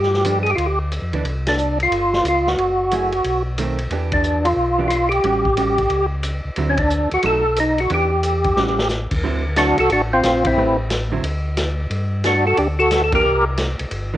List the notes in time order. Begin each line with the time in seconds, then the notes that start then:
Already playing: G2 G4
0.03 snare
0.14 snare
0.24 F3 B3 D4, hi-hat pedal, ride
0.43 G#4, ride
0.50 G4
0.55 D2 F4, ride
0.66 G4
0.92 hi-hat pedal, ride
1.02 F2
1.12 D2 E3 B3 D4, ride
1.24 C2, ride
1.47 D4, snare, ride
1.58 hi-hat pedal
1.80 F4, ride
1.91 G1, ride
2.13 snare
2.24 C#2, hi-hat pedal, ride
2.28 F4
2.47 F#4, snare
2.57 F#1, ride
2.91 F#3 A3 E4 G#4, hi-hat pedal, ride
3.12 ride
3.24 B1, ride
3.58 D#3 A3 C4, hi-hat pedal, ride
3.78 ride
3.90 E2 E3 B3 D4 G4, ride
4.12 D4, kick, ride
4.23 hi-hat pedal
4.45 F4, ride
4.57 B1
4.79 E3 B3 D4 G4
4.88 F4, hi-hat pedal, ride
5.09 G4, ride
5.24 A1 G3 C#4 F#4, ride
5.45 kick
5.57 G3 C#4 F#4, hi-hat pedal, ride
5.78 kick, ride
5.90 C#2, ride
6.23 hi-hat pedal, ride
6.44 C#2
6.56 D2 D3 F#3 C4 E4, ride
6.69 C#4
6.77 D4, kick, ride
6.90 hi-hat pedal
7.11 D2 F#4, ride
7.23 B1 F#3 A3 D#4 A4, ride
7.56 D#4, hi-hat pedal, ride
7.78 F#4, ride
7.90 E2 E3 B3 D4 G4, ride
7.94 G4
8.23 hi-hat pedal, ride
8.44 kick, ride
8.56 A1 G3 C#4 F#4, snare
8.67 snare
8.79 snare
8.89 snare, hi-hat pedal
9.11 D#2, kick, crash
9.23 D2 D3 F#3 C4 E4
9.56 D3 F#3 C4 D4 E4 F#4, snare, hi-hat pedal, ride
9.78 C2 F#4 A4, ride
9.90 A1 D4 F#4, ride
10.13 C4 F4
10.23 A#1, snare, hi-hat pedal, ride
10.45 C4 E4, kick, ride
10.57 A1 A3 C4 G4 B4
10.90 snare, hi-hat pedal, ride
11.12 D3 F#3 C4 E4
11.23 D2, ride
11.57 snare, hi-hat pedal, ride
11.90 G2, ride
12.24 D4 F#4, snare, hi-hat pedal, ride
12.47 F#4 A4
12.57 D2 D4 G4, ride
12.79 F#4 A4
12.91 snare, hi-hat pedal, ride
13.04 A4
13.12 E3 A#3 D4 G4 A#4, kick, ride
13.24 C2
13.57 snare, hi-hat pedal, ride
13.79 C2, ride
13.91 G1, ride
14.14 E3